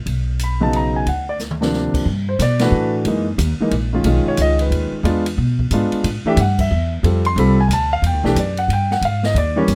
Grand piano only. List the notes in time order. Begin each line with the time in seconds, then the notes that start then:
0.43 B5
0.60 C#3 F#3 B3 D#4 A5
0.76 A#5
0.96 G#5
1.09 F#5
1.29 D5
1.61 C3 F3 A#3 D4
2.29 C5
2.42 D5
2.60 E3 A3 D4 F#4 B4
3.06 E3 G#3 A#3 D#4
3.60 E3 G#3 A#3 D#4
3.93 D#3 G#3 C#4 F4
4.05 D#3 G#3 C#4 F4
4.28 C#5
4.41 D#5
4.61 B4
5.04 G#3 B3 D4 F4
5.72 G#3 B3 D4 F4
6.26 E3 A3 D4 G4 E5
6.41 F#5
6.60 E5
7.04 G3 C4 F4 A4
7.26 C6
7.37 G3 C4 F4 A4 B5
7.61 G#5
7.68 G#5
7.73 A5
7.93 F5
8.06 G5
8.24 E3 A3 D4 G4 B4
8.39 D5
8.59 F#5
8.73 G5
8.92 F#5
9.05 F5
9.25 D#5
9.38 D5
9.56 E3 G3 A#3 C#4 C#5